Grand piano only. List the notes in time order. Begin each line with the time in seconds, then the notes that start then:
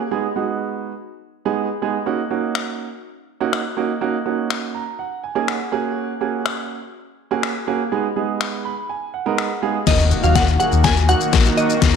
0.11 G#3 B3 D#4 G#4
0.36 G#3 B3 D#4 F#4
1.45 G#3 B3 D#4 G#4
1.82 G#3 B3 D#4 G#4
2.06 A#3 C#4 D#4 F#4
2.31 A#3 C#4 D#4 F#4
3.40 A#3 C#4 D#4 F#4
3.77 A#3 C#4 D#4 F#4
4.01 A#3 C#4 D#4 F#4
4.26 A#3 C#4 D#4 F#4
4.75 A#5
4.99 F#5
5.24 G#5
5.35 A#3 C#4 D#4 G#4
5.48 F#5
5.72 A#3 C#4 F#4 G#4
6.21 A#3 C#4 F#4 G#4
7.31 A#3 C#4 F#4 G#4
7.67 A#3 C#4 F#4 G#4
7.92 G#3 B3 D#4 G#4
8.16 G#3 B3 D#4 G#4
8.65 B5
8.89 G#5
9.14 F#5
9.26 G#3 B3 D#4 A#4
9.38 F#5
9.62 G#3 B3 D#4 G#4 F5
10.23 F#3 A#3 D#4 F#4
10.59 F#3 A#3 D#4 G#4
11.09 F#3 A#3 D#4 F#4
11.45 F#3 A#3 D#4 F#4